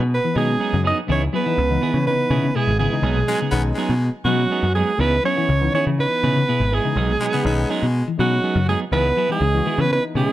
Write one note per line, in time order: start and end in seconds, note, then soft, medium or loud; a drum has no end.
0.00 0.18 B2 medium
0.14 0.36 B3 medium
0.14 0.35 B4 medium
0.24 0.32 E3 medium
0.34 0.54 B2 medium
0.34 0.53 D#3 medium
0.34 0.51 F#3 medium
0.34 0.74 G#3 medium
0.34 0.82 G#3 medium
0.34 0.51 B3 medium
0.34 0.75 C#4 medium
0.34 0.51 D#4 medium
0.34 0.75 D#4 medium
0.34 0.51 G#4 medium
0.34 0.82 G#4 medium
0.60 0.75 F#3 medium
0.60 0.75 B3 medium
0.60 0.75 D#4 medium
0.60 0.76 G#4 medium
0.73 0.92 F#2 medium
0.73 0.91 C#3 medium
0.84 0.99 F#3 medium
0.84 0.99 B3 medium
0.84 1.00 D#4 medium
0.84 1.00 G#4 medium
0.84 0.98 D#5 medium
0.88 0.98 D#4 medium
1.07 1.28 C#2 loud
1.07 1.27 E3 medium
1.07 1.26 E3 medium
1.07 1.28 B3 medium
1.07 1.24 B3 medium
1.07 1.21 C#4 medium
1.07 1.29 D#4 medium
1.07 1.24 E4 medium
1.07 1.24 G#4 medium
1.12 1.22 C#5 loud
1.33 1.42 F#3 medium
1.33 1.46 B3 medium
1.33 2.04 B3 medium
1.33 1.45 E4 medium
1.33 1.44 G#4 medium
1.33 2.04 B4 loud
1.46 1.58 E3 medium
1.46 1.54 E3 medium
1.46 1.59 B3 medium
1.46 1.59 D#4 medium
1.46 1.61 E4 soft
1.46 1.60 G#4 soft
1.58 1.77 C#2 loud
1.58 1.67 C#3 medium
1.70 1.89 E3 medium
1.70 1.79 E3 medium
1.70 1.90 B3 medium
1.70 1.90 D#4 medium
1.81 1.92 D#3 medium
1.81 1.97 B3 medium
1.81 1.97 E4 medium
1.81 1.98 G#4 medium
1.94 2.13 C#3 medium
1.94 2.04 E3 medium
2.06 2.24 C#3 medium
2.06 2.51 E3 medium
2.06 2.52 B3 medium
2.06 2.58 B3 medium
2.06 2.52 D#4 medium
2.06 2.57 B4 medium
2.30 2.41 B2 medium
2.30 2.49 C#3 medium
2.30 2.46 B3 medium
2.30 2.46 E4 medium
2.30 2.46 G#4 medium
2.44 2.52 C#3 medium
2.55 2.73 B2 medium
2.55 2.80 G#3 medium
2.55 2.71 B3 medium
2.55 2.71 E4 medium
2.55 2.79 G#4 medium
2.55 2.71 G#4 medium
2.67 2.86 G#1 medium
2.79 2.89 C#3 medium
2.79 3.74 G#3 medium
2.79 2.95 B3 medium
2.79 2.95 E4 medium
2.79 3.74 G#4 medium
2.79 2.95 G#4 medium
2.90 3.10 C#3 medium
2.90 3.03 E3 medium
2.90 3.04 B3 medium
2.90 3.04 D#4 medium
3.03 3.22 B1 loud
3.03 3.19 F#3 medium
3.03 3.19 B3 medium
3.03 3.19 D#4 medium
3.03 3.19 G#4 medium
3.16 3.34 B2 medium
3.27 3.41 F#3 medium
3.27 3.40 G#3 loud
3.27 3.40 B3 medium
3.27 3.40 D#4 medium
3.27 3.39 G#4 medium
3.40 3.50 C#3 medium
3.40 3.56 B3 soft
3.40 3.56 D#4 soft
3.40 3.55 G#4 medium
3.52 3.71 B1 medium
3.52 3.70 D#3 medium
3.52 3.92 G#3 loud
3.52 3.63 B3 loud
3.52 3.92 C#4 medium
3.52 3.93 D#4 loud
3.75 3.93 F#3 medium
3.75 4.11 G#3 medium
3.75 3.93 B3 medium
3.75 3.93 D#4 medium
3.75 3.93 G#4 medium
3.89 4.08 B2 medium
4.25 4.44 B2 medium
4.25 4.41 F#3 medium
4.25 4.44 F#3 medium
4.25 4.72 F#3 medium
4.25 4.65 G#3 medium
4.25 4.42 B3 medium
4.25 4.65 C#4 medium
4.25 4.42 D#4 medium
4.25 4.71 F#4 medium
4.25 4.66 F#4 medium
4.25 4.42 G#4 medium
4.51 4.66 B3 medium
4.51 4.67 D#4 medium
4.51 4.67 G#4 medium
4.51 muted clean electric guitar stroke medium
4.63 4.82 F#2 medium
4.75 4.91 F#3 medium
4.75 5.01 G#3 medium
4.75 4.91 B3 medium
4.75 4.91 D#4 medium
4.75 5.02 G#4 medium
4.75 4.91 G#4 medium
4.98 5.18 C#2 loud
4.98 5.19 E3 medium
4.98 5.19 B3 medium
4.98 5.23 B3 medium
4.98 5.15 B3 medium
4.98 5.20 D#4 medium
4.98 5.15 E4 medium
4.98 5.16 G#4 medium
4.98 5.25 B4 loud
4.98 muted clean electric guitar stroke medium
5.24 5.33 F#3 medium
5.24 5.37 B3 medium
5.24 5.70 C#4 loud
5.24 5.37 E4 medium
5.24 5.36 G#4 medium
5.24 5.71 C#5 loud
5.35 5.49 E3 medium
5.35 5.46 E3 medium
5.35 5.49 B3 medium
5.35 5.50 E4 medium
5.35 5.52 E4 soft
5.35 5.52 G#4 soft
5.49 5.68 C#2 loud
5.49 5.58 C#3 medium
5.61 5.80 E3 medium
5.61 5.70 E3 medium
5.61 5.81 B3 medium
5.61 5.81 D#4 medium
5.73 5.82 D#3 medium
5.73 5.89 B3 medium
5.73 5.85 C#4 medium
5.73 5.89 E4 medium
5.73 5.90 G#4 medium
5.73 5.86 C#5 medium
5.86 6.05 C#3 medium
5.86 5.95 E3 medium
5.97 6.43 E3 medium
5.97 6.44 B3 medium
5.97 6.75 B3 medium
5.97 6.44 D#4 medium
5.97 6.76 B4 loud
5.97 muted clean electric guitar stroke medium
6.23 6.32 B2 medium
6.23 6.42 C#3 medium
6.23 6.38 B3 medium
6.23 6.38 E4 medium
6.23 6.38 G#4 medium
6.36 6.44 C#3 medium
6.48 6.66 B2 medium
6.48 6.63 B3 medium
6.48 6.63 E4 medium
6.48 6.63 G#4 medium
6.60 6.79 G#1 medium
6.72 7.71 G#3 medium
6.72 6.87 B3 medium
6.72 6.87 E4 medium
6.72 6.88 G#4 medium
6.72 7.71 G#4 medium
6.84 7.02 C#3 medium
6.84 6.96 E3 medium
6.84 6.96 B3 medium
6.84 6.97 D#4 medium
6.96 7.15 B1 loud
6.96 7.12 F#3 medium
6.96 7.12 B3 medium
6.96 7.12 D#4 medium
6.96 7.12 G#4 medium
7.10 7.27 B2 medium
7.21 7.34 F#3 medium
7.21 7.26 G#3 medium
7.21 7.34 B3 medium
7.21 7.33 D#4 medium
7.21 7.33 G#4 medium
7.33 7.42 C#3 medium
7.33 7.44 B3 medium
7.33 7.48 B3 soft
7.33 7.48 D#4 soft
7.33 7.48 G#4 medium
7.43 7.64 B1 medium
7.43 7.63 D#3 medium
7.43 7.83 G#3 medium
7.43 7.73 B3 loud
7.43 7.84 C#4 medium
7.43 7.84 D#4 loud
7.70 7.85 F#3 medium
7.70 8.08 G#3 medium
7.70 7.85 B3 medium
7.70 7.85 D#4 medium
7.70 7.86 G#4 medium
7.83 8.01 B2 medium
8.08 8.16 E3 medium
8.17 8.38 B2 medium
8.17 8.34 F#3 medium
8.17 8.37 F#3 medium
8.17 8.65 F#3 medium
8.17 8.58 G#3 medium
8.17 8.34 B3 medium
8.17 8.58 C#4 medium
8.17 8.58 D#4 medium
8.17 8.35 D#4 medium
8.17 8.65 F#4 loud
8.17 8.35 G#4 medium
8.43 8.58 F#3 medium
8.43 8.59 B3 medium
8.43 8.59 D#4 medium
8.43 8.59 G#4 medium
8.56 8.75 F#2 medium
8.56 8.73 C#3 medium
8.68 8.83 F#3 medium
8.68 8.79 G#3 medium
8.68 8.84 B3 medium
8.68 8.84 D#4 medium
8.68 8.80 G#4 medium
8.68 8.84 G#4 medium
8.92 9.11 C#2 loud
8.92 9.12 E3 medium
8.92 9.10 E3 medium
8.92 9.08 B3 medium
8.92 9.12 B3 medium
8.92 9.28 B3 loud
8.92 9.13 D#4 medium
8.92 9.08 E4 medium
8.92 9.08 G#4 medium
8.92 9.27 B4 loud
9.17 9.26 F#3 medium
9.17 9.30 B3 medium
9.17 9.30 E4 medium
9.17 9.28 G#4 medium
9.29 9.38 E3 medium
9.29 9.42 E3 medium
9.29 9.81 G#3 medium
9.29 9.43 B3 medium
9.29 9.43 D#4 medium
9.29 9.45 E4 soft
9.29 9.44 G#4 soft
9.29 9.82 G#4 loud
9.41 9.60 C#2 loud
9.41 9.50 C#3 medium
9.54 9.63 E3 medium
9.54 9.74 E3 medium
9.54 9.74 B3 medium
9.54 9.75 F#4 medium
9.66 9.75 D#3 medium
9.66 9.81 B3 medium
9.66 9.82 E4 medium
9.66 9.82 G#4 medium
9.78 9.97 C#3 medium
9.78 9.88 E3 medium
9.78 9.91 B3 medium
9.78 9.92 B4 loud
9.90 10.32 E3 medium
9.90 10.32 B3 medium
9.90 10.03 B3 medium
9.90 10.32 D#4 medium
9.90 10.03 B4 loud
9.90 muted clean electric guitar stroke medium
10.15 10.24 B2 medium
10.15 10.32 C#3 medium
10.15 10.32 G#3 medium
10.15 10.31 B3 medium
10.15 10.31 E4 medium
10.15 10.31 G#4 medium
10.15 10.32 G#4 loud
10.28 10.32 C#3 medium